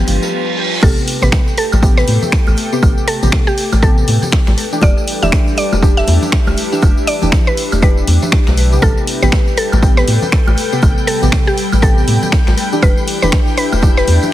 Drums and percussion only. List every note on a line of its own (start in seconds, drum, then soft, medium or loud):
0.07 open hi-hat loud
0.07 high conga medium
0.07 shaker medium
0.23 snare soft
0.23 tambourine medium
0.83 kick loud
0.83 crash loud
0.83 tambourine medium
0.83 high conga loud
0.83 high woodblock medium
0.83 shaker medium
0.98 tambourine soft
1.08 open hi-hat loud
1.08 shaker medium
1.22 snare soft
1.22 tambourine medium
1.22 high conga medium
1.22 low conga medium
1.32 finger snap loud
1.32 kick loud
1.32 snare loud
1.32 tambourine medium
1.32 shaker medium
1.48 tambourine soft
1.58 open hi-hat medium
1.58 shaker medium
1.72 tambourine medium
1.72 high conga medium
1.72 high woodblock medium
1.83 kick loud
1.83 tambourine medium
1.83 shaker medium
1.97 snare medium
1.97 tambourine soft
2.07 open hi-hat loud
2.07 high conga medium
2.07 shaker medium
2.22 tambourine medium
2.22 low conga medium
2.32 finger snap loud
2.32 kick loud
2.32 snare loud
2.32 tambourine medium
2.32 shaker medium
2.47 tambourine soft
2.47 high conga medium
2.47 high woodblock medium
2.57 open hi-hat medium
2.57 shaker medium
2.73 tambourine medium
2.83 kick loud
2.83 tambourine medium
2.83 high conga loud
2.83 high woodblock medium
2.83 shaker medium
2.98 tambourine soft
3.08 open hi-hat loud
3.08 shaker medium
3.23 closed hi-hat soft
3.23 tambourine medium
3.23 high conga medium
3.23 low conga medium
3.32 finger snap loud
3.32 kick loud
3.32 snare loud
3.32 tambourine medium
3.32 shaker loud
3.48 tambourine soft
3.57 open hi-hat loud
3.57 shaker medium
3.72 closed hi-hat soft
3.72 tambourine medium
3.72 high conga medium
3.72 high woodblock medium
3.83 kick loud
3.83 tambourine medium
3.83 shaker medium
3.98 tambourine soft
4.07 open hi-hat loud
4.07 high conga medium
4.07 shaker medium
4.22 tambourine medium
4.22 low conga medium
4.32 finger snap loud
4.32 kick loud
4.32 snare loud
4.32 shaker medium
4.47 finger snap soft
4.47 snare soft
4.47 tambourine soft
4.47 high conga loud
4.58 open hi-hat medium
4.58 shaker medium
4.73 tambourine medium
4.81 kick loud
4.81 tambourine medium
4.81 high conga loud
4.81 high woodblock medium
4.81 shaker medium
4.97 tambourine soft
5.07 open hi-hat loud
5.07 shaker medium
5.23 snare soft
5.23 tambourine medium
5.23 high conga medium
5.23 low conga medium
5.32 finger snap loud
5.32 kick loud
5.32 snare loud
5.32 tambourine medium
5.32 shaker medium
5.48 tambourine soft
5.57 open hi-hat loud
5.57 shaker medium
5.73 tambourine medium
5.73 high conga medium
5.73 high woodblock medium
5.83 kick loud
5.83 tambourine medium
5.83 shaker medium
5.97 snare medium
5.97 tambourine soft
6.07 open hi-hat loud
6.07 high conga medium
6.07 shaker medium
6.22 tambourine medium
6.22 low conga medium
6.32 finger snap loud
6.32 kick loud
6.32 snare loud
6.32 shaker medium
6.47 tambourine soft
6.47 high conga loud
6.47 high woodblock medium
6.57 open hi-hat loud
6.57 shaker medium
6.73 tambourine medium
6.82 kick loud
6.82 tambourine medium
6.82 high conga loud
6.82 high woodblock medium
6.82 shaker medium
6.97 tambourine soft
7.07 open hi-hat loud
7.07 shaker medium
7.22 closed hi-hat soft
7.22 tambourine medium
7.22 high conga medium
7.22 low conga medium
7.32 finger snap loud
7.32 kick loud
7.32 snare loud
7.32 tambourine medium
7.32 shaker medium
7.47 tambourine soft
7.57 open hi-hat loud
7.57 shaker medium
7.72 closed hi-hat soft
7.72 tambourine medium
7.72 high conga medium
7.72 high woodblock medium
7.82 kick loud
7.82 tambourine medium
7.82 shaker medium
7.97 tambourine soft
8.07 open hi-hat loud
8.07 high conga medium
8.07 shaker medium
8.22 tambourine medium
8.22 low conga medium
8.32 finger snap loud
8.32 kick loud
8.32 snare loud
8.32 shaker medium
8.47 finger snap soft
8.47 snare medium
8.47 tambourine soft
8.47 high conga medium
8.57 open hi-hat loud
8.57 shaker medium
8.72 tambourine medium
8.82 kick loud
8.82 tambourine medium
8.82 high conga medium
8.82 high woodblock medium
8.82 shaker medium
8.97 tambourine soft
9.07 open hi-hat loud
9.07 shaker medium
9.22 snare soft
9.22 tambourine medium
9.22 high conga medium
9.22 low conga medium
9.32 finger snap loud
9.32 kick loud
9.32 snare loud
9.32 tambourine medium
9.32 shaker medium
9.47 tambourine soft
9.57 open hi-hat medium
9.57 shaker medium
9.72 tambourine medium
9.72 high conga loud
9.72 high woodblock medium
9.83 kick loud
9.83 tambourine medium
9.83 shaker medium
9.97 snare medium
9.97 tambourine soft
10.08 open hi-hat loud
10.08 high conga medium
10.08 shaker medium
10.22 tambourine medium
10.22 low conga medium
10.32 finger snap loud
10.32 kick loud
10.32 snare loud
10.32 tambourine medium
10.32 shaker medium
10.47 tambourine soft
10.47 high conga loud
10.47 high woodblock medium
10.58 open hi-hat medium
10.58 shaker medium
10.73 tambourine medium
10.82 kick loud
10.82 tambourine medium
10.82 high conga medium
10.82 high woodblock medium
10.82 shaker medium
10.98 tambourine soft
11.08 open hi-hat loud
11.08 shaker medium
11.22 closed hi-hat soft
11.22 tambourine medium
11.22 high conga medium
11.22 low conga medium
11.32 finger snap loud
11.32 kick loud
11.32 snare loud
11.32 shaker medium
11.47 tambourine soft
11.58 open hi-hat medium
11.58 shaker medium
11.72 closed hi-hat soft
11.72 tambourine medium
11.72 high conga medium
11.72 high woodblock medium
11.83 kick loud
11.83 tambourine medium
11.83 shaker medium
11.98 tambourine soft
12.08 open hi-hat loud
12.08 high conga medium
12.08 shaker medium
12.22 tambourine medium
12.22 low conga medium
12.32 finger snap loud
12.32 kick loud
12.32 snare loud
12.32 tambourine medium
12.32 shaker medium
12.47 finger snap soft
12.47 snare soft
12.47 tambourine soft
12.47 high conga medium
12.58 open hi-hat medium
12.58 shaker medium
12.72 tambourine medium
12.83 kick loud
12.83 tambourine medium
12.83 high conga medium
12.83 high woodblock medium
12.83 shaker loud
12.97 tambourine soft
13.08 open hi-hat loud
13.08 shaker medium
13.22 snare soft
13.22 tambourine medium
13.22 high conga medium
13.22 low conga medium
13.32 finger snap loud
13.32 kick loud
13.32 snare loud
13.32 tambourine medium
13.32 shaker medium
13.47 tambourine soft
13.58 open hi-hat medium
13.58 shaker medium
13.72 tambourine medium
13.72 high conga medium
13.72 high woodblock medium
13.82 kick loud
13.82 tambourine medium
13.82 shaker medium
13.97 snare medium
13.97 tambourine soft
14.07 open hi-hat loud
14.07 high conga medium
14.07 shaker medium
14.23 tambourine medium
14.23 low conga medium